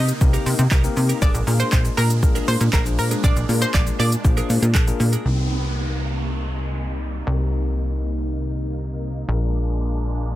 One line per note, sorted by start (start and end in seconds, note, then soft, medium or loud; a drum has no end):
0.00 0.12 C3 loud
0.00 1.18 C3 medium
0.00 5.21 A#3 medium
0.00 0.12 D#4 medium
0.00 1.18 D#4 medium
0.08 muted clean electric guitar stroke medium
0.08 closed hi-hat medium
0.08 shaker medium
0.21 0.37 C2 loud
0.21 0.61 A#3 loud
0.21 0.61 C4 medium
0.21 0.61 D#4 medium
0.21 0.62 G4 medium
0.21 0.62 A#4 loud
0.21 muted clean electric guitar stroke soft
0.21 kick loud
0.21 shaker medium
0.33 0.45 D#4 medium
0.33 0.45 G4 medium
0.33 0.46 A#4 medium
0.33 closed hi-hat medium
0.33 shaker medium
0.46 0.54 C3 loud
0.46 muted clean electric guitar stroke medium
0.46 open hi-hat medium
0.46 shaker medium
0.59 0.67 C3 loud
0.59 muted clean electric guitar stroke medium
0.59 closed hi-hat medium
0.59 shaker medium
0.59 shaker soft
0.71 0.88 C2 loud
0.71 0.87 D#4 medium
0.71 0.83 G4 loud
0.71 0.83 A#4 loud
0.71 kick loud
0.71 clap loud
0.71 shaker medium
0.84 1.22 A#3 loud
0.84 1.22 C4 medium
0.84 1.22 D#4 medium
0.84 1.22 G4 medium
0.84 1.22 A#4 loud
0.84 muted clean electric guitar stroke medium
0.84 closed hi-hat medium
0.84 shaker medium
0.96 1.13 C3 loud
0.96 muted clean electric guitar stroke medium
0.96 open hi-hat medium
0.96 shaker medium
0.96 shaker soft
1.09 1.21 D#4 medium
1.09 1.22 G4 medium
1.09 1.22 A#4 medium
1.09 closed hi-hat medium
1.09 shaker medium
1.22 1.30 A#1 loud
1.22 5.21 G#3 medium
1.22 1.45 D4 medium
1.22 5.21 D4 medium
1.22 1.45 G#4 medium
1.22 1.46 A#4 medium
1.22 1.39 D5 loud
1.22 kick loud
1.22 shaker medium
1.34 1.43 A#1 loud
1.34 closed hi-hat medium
1.34 shaker medium
1.47 1.63 A#2 loud
1.47 1.96 A#3 medium
1.47 1.96 D4 medium
1.47 1.96 F4 medium
1.47 1.96 G#4 medium
1.47 1.96 A#4 loud
1.47 open hi-hat medium
1.47 shaker medium
1.59 1.73 D4 medium
1.59 1.73 G#4 medium
1.59 1.72 A#4 medium
1.59 1.68 C5 medium
1.59 closed hi-hat medium
1.59 shaker soft
1.59 shaker medium
1.72 1.89 A#1 loud
1.72 1.89 C5 medium
1.72 kick loud
1.72 clap loud
1.72 shaker medium
1.85 muted clean electric guitar stroke medium
1.85 closed hi-hat medium
1.85 shaker medium
1.97 2.24 A#2 medium
1.97 2.14 D4 medium
1.97 2.10 G#4 medium
1.97 2.06 A#4 medium
1.97 2.09 A#4 medium
1.97 open hi-hat medium
1.97 shaker medium
2.10 muted clean electric guitar stroke medium
2.10 closed hi-hat medium
2.10 shaker medium
2.23 2.39 A#1 loud
2.23 2.63 A#3 loud
2.23 2.63 D4 medium
2.23 2.63 F4 medium
2.23 2.63 G#4 medium
2.23 2.63 A#4 loud
2.23 muted clean electric guitar stroke soft
2.23 kick loud
2.23 shaker medium
2.35 2.47 D4 medium
2.35 2.47 G#4 medium
2.35 2.47 A#4 medium
2.35 closed hi-hat medium
2.35 shaker medium
2.48 2.56 A#2 loud
2.48 2.56 C5 medium
2.48 muted clean electric guitar stroke soft
2.48 open hi-hat medium
2.48 shaker medium
2.60 2.69 A#2 loud
2.60 muted clean electric guitar stroke soft
2.60 closed hi-hat medium
2.60 shaker medium
2.60 shaker soft
2.73 3.00 A#1 loud
2.73 2.89 D4 medium
2.73 2.85 G#4 loud
2.73 2.82 A#4 medium
2.73 2.84 A#4 loud
2.73 kick loud
2.73 clap loud
2.73 shaker medium
2.86 3.26 A#3 medium
2.86 3.26 D4 medium
2.86 3.26 F4 medium
2.86 3.26 G#4 medium
2.86 3.26 C5 medium
2.86 muted clean electric guitar stroke medium
2.86 closed hi-hat medium
2.86 shaker medium
2.98 3.15 A#2 loud
2.98 3.07 A#4 medium
2.98 muted clean electric guitar stroke soft
2.98 open hi-hat medium
2.98 shaker medium
2.98 shaker soft
3.11 3.22 D4 soft
3.11 3.23 G#4 medium
3.11 3.23 A#4 medium
3.11 closed hi-hat medium
3.11 shaker soft
3.11 shaker medium
3.23 3.32 A#1 loud
3.23 3.47 D4 loud
3.23 3.47 G#4 medium
3.23 3.47 A#4 loud
3.23 3.40 D5 medium
3.23 kick loud
3.23 shaker medium
3.36 3.44 A#1 medium
3.36 closed hi-hat medium
3.36 shaker medium
3.49 3.65 A#2 loud
3.49 3.97 A#3 medium
3.49 3.97 D4 medium
3.49 3.97 F4 medium
3.49 3.97 G#4 medium
3.49 3.97 A#4 medium
3.49 open hi-hat medium
3.49 shaker soft
3.49 shaker medium
3.61 3.74 D4 medium
3.61 3.74 G#4 medium
3.61 3.74 A#4 medium
3.61 3.70 C5 medium
3.61 closed hi-hat medium
3.61 shaker soft
3.61 shaker medium
3.74 3.91 A#1 loud
3.74 3.91 D5 medium
3.74 kick loud
3.74 clap loud
3.74 shaker medium
3.87 muted clean electric guitar stroke soft
3.87 closed hi-hat medium
3.87 shaker medium
3.99 4.16 A#2 loud
3.99 4.15 D4 medium
3.99 4.11 G#4 medium
3.99 4.11 A#4 medium
3.99 4.08 D5 medium
3.99 open hi-hat medium
3.99 shaker medium
4.12 muted clean electric guitar stroke medium
4.12 closed hi-hat medium
4.12 shaker medium
4.24 4.41 A#1 loud
4.24 4.65 A#3 medium
4.24 4.65 D4 medium
4.24 4.65 F4 medium
4.24 4.65 G#4 medium
4.24 4.65 C5 loud
4.24 muted clean electric guitar stroke soft
4.24 kick loud
4.24 shaker medium
4.37 4.48 D4 medium
4.37 4.49 G#4 medium
4.37 4.49 A#4 loud
4.37 closed hi-hat medium
4.37 shaker medium
4.50 4.58 A#2 loud
4.50 muted clean electric guitar stroke soft
4.50 open hi-hat medium
4.50 shaker medium
4.62 4.76 A#2 loud
4.62 muted clean electric guitar stroke soft
4.62 closed hi-hat medium
4.62 shaker medium
4.62 shaker soft
4.75 4.91 A#1 loud
4.75 4.91 D4 medium
4.75 4.87 G#4 medium
4.75 4.86 A#4 medium
4.75 kick loud
4.75 clap loud
4.75 shaker medium
4.87 5.25 A#3 medium
4.87 5.25 D4 medium
4.87 5.25 F4 medium
4.87 5.25 G#4 medium
4.87 5.25 A#4 loud
4.87 muted clean electric guitar stroke soft
4.87 closed hi-hat medium
4.87 shaker medium
5.00 5.16 A#2 loud
5.00 muted clean electric guitar stroke soft
5.00 open hi-hat medium
5.00 shaker medium
5.00 shaker soft
5.12 5.26 D4 soft
5.12 5.25 G#4 medium
5.12 5.25 A#4 medium
5.12 closed hi-hat medium
5.12 shaker medium
5.25 7.23 C2 medium
5.25 9.25 C3 medium
5.25 10.36 A#3 medium
5.25 7.23 C4 medium
5.25 7.23 D#4 medium
5.25 9.25 D#4 medium
5.25 7.23 G4 medium
5.25 7.23 A#4 medium
5.25 downlifter medium
7.26 9.25 C2 medium
7.26 9.24 C4 medium
7.26 9.25 D#4 medium
7.26 9.25 G4 medium
7.26 9.25 A#4 medium
9.28 10.36 A#1 medium
9.28 10.36 G#3 medium
9.28 10.36 D4 medium
9.28 10.36 F4 medium
9.28 10.36 G#4 medium
9.28 10.36 A#4 medium